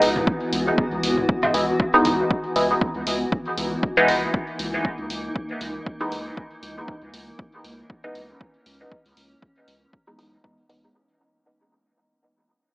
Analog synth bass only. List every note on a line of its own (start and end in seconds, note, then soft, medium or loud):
0.02 0.20 C#2 medium
0.53 0.70 C#2 medium
0.92 1.00 C#2 medium
1.03 1.21 C#2 loud
1.54 1.72 C#2 medium
2.05 2.23 C#2 medium
2.56 2.74 C#2 medium
2.95 3.03 C#2 loud
3.07 3.25 C#2 loud
3.58 3.76 C#2 medium
4.08 4.26 C#2 medium
4.59 4.77 C#2 medium
4.99 5.06 C#2 medium
5.10 5.28 C#2 medium
5.61 5.79 C#2 medium
6.12 6.30 C#2 medium
6.63 6.81 C#2 medium
7.02 7.10 C#2 medium
7.13 7.31 C#2 loud
7.64 7.82 C#2 medium
8.15 8.33 C#2 medium
8.66 8.84 C#2 medium
9.06 9.13 C#2 medium
9.17 9.35 C#2 medium
9.68 9.86 C#2 medium
10.19 10.37 B1 medium
10.69 10.87 C#2 medium